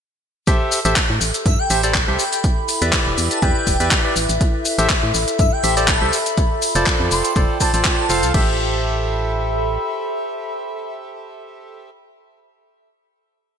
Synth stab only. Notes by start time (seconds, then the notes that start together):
0.47 G4 A4 C5 E5
0.85 G4 A4 C5 E5
1.70 G4 A4 C5 E5
1.84 G4 A4 C5 D5
2.08 G4 A4 C5 E5
2.82 G4 B4 D5 E5
3.42 G4 B4 D5 E5
3.80 G4 B4 D5 E5
4.05 G4 B4 D5 E5
4.79 G4 A4 C5 E5
5.64 G4 A4 C5 E5
5.77 G4 A4 C5 D5
6.02 G4 A4 C5 E5
6.75 F4 A4 C5 D5
7.36 F4 A4 C5 D5
7.61 F4 A4 C5 D5
7.74 F4 A4 C5 D5
8.10 F4 A4 C5 F5
8.34 G4 A4 C5 E5